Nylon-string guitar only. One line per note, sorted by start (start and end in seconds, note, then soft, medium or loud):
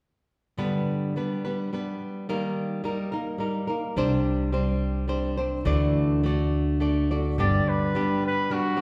0.58 1.16 G2 soft
0.58 1.16 D3 soft
0.58 1.16 G3 medium
0.58 1.16 B3 medium
0.58 1.16 D4 soft
0.58 1.16 B4 medium
1.16 1.46 G3 soft
1.16 1.45 B3 soft
1.16 1.44 D4 soft
1.16 1.43 B4 medium
1.45 1.72 G3 soft
1.45 1.72 B3 soft
1.45 1.72 D4 soft
1.45 1.73 B4 soft
1.73 2.29 G3 soft
1.73 2.29 B3 soft
1.73 2.29 D4 soft
1.73 2.29 B4 soft
2.29 2.85 D#3 medium
2.29 2.83 G3 medium
2.29 2.83 A#3 medium
2.29 2.84 D#4 medium
2.29 2.84 A#4 medium
2.84 3.13 G3 soft
2.84 3.12 A#3 medium
2.84 3.12 D#4 medium
2.84 3.11 A#4 medium
3.12 3.39 A#3 soft
3.12 3.39 D#4 soft
3.12 3.39 A#4 soft
3.38 3.68 G3 soft
3.38 3.69 A#3 soft
3.38 3.68 D#4 soft
3.38 3.66 A#4 soft
3.67 3.97 A#3 soft
3.67 3.97 D#4 soft
3.67 3.96 A#4 soft
3.96 4.53 C3 medium
3.96 4.51 G3 medium
3.96 4.52 C4 medium
3.96 4.54 D4 medium
3.96 4.53 C5 medium
4.52 5.07 G3 soft
4.52 5.07 C4 soft
4.52 5.09 D4 medium
4.52 5.08 C5 medium
5.08 5.38 G3 soft
5.08 5.38 C4 soft
5.08 5.38 D4 medium
5.08 5.36 C5 medium
5.37 5.65 C4 soft
5.37 5.64 D4 soft
5.37 5.66 C5 soft
5.65 7.39 D3 medium
5.65 6.23 E3 medium
5.65 6.22 A3 medium
5.65 6.25 D4 medium
5.65 6.23 F#4 medium
5.65 6.26 D5 medium
6.24 6.79 A3 medium
6.24 6.81 D4 medium
6.24 6.81 F#4 medium
6.24 6.81 D5 medium
6.80 7.11 A3 soft
6.80 7.11 D4 medium
6.80 7.10 F#4 soft
6.80 7.10 D5 soft
7.11 7.39 A3 soft
7.11 7.39 D4 soft
7.11 7.39 F#4 soft
7.11 7.39 D5 soft
7.39 7.96 G2 medium
7.39 7.96 D3 medium
7.39 7.95 G3 medium
7.39 7.95 B3 medium
7.39 7.95 D4 medium
7.39 7.96 G4 medium
7.95 8.50 G3 medium
7.95 8.49 B3 soft
7.95 8.50 D4 soft
7.95 8.51 G4 medium
8.51 8.77 G3 soft
8.51 8.76 B3 soft
8.51 8.76 D4 medium
8.51 8.76 G4 soft
8.77 8.81 B3 soft
8.77 8.81 D4 soft
8.77 8.81 G4 soft